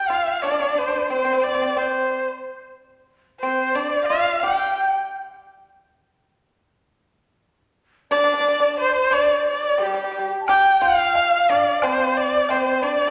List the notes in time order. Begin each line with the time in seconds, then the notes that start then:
Already playing: G5
0.09 F4 F5
0.37 F5
0.42 D4 D5
0.51 D4
0.60 D4
0.66 D4
0.75 D4 C5
0.81 D4
0.88 D4
0.95 D4
1.10 C4 C5
1.19 C4
1.25 C4
1.33 C4
1.40 C4 D5
1.47 C4
1.55 C4
1.62 C4
1.71 D5
1.77 C4 C5
3.40 C4 C5
3.75 D4 D5
4.05 F5
4.10 F4
4.40 G4 G5
8.11 D4 D5
8.18 D4
8.24 D4
8.34 D4
8.41 D4
8.48 D4
8.60 D4
8.78 C5
8.94 C5
9.10 D4 D5
9.43 D5
9.48 D5
9.78 G3 G4
9.82 G3 G4
9.94 G3
10.04 G3
10.11 G3
10.19 G3
10.40 A5
10.46 G4 G5, high woodblock
10.82 F4 F5
11.15 high woodblock, low woodblock
11.50 D4 D5
11.81 C4 C5, high woodblock
12.17 D5
12.49 C4 C5, high woodblock, low woodblock
12.82 D4 D5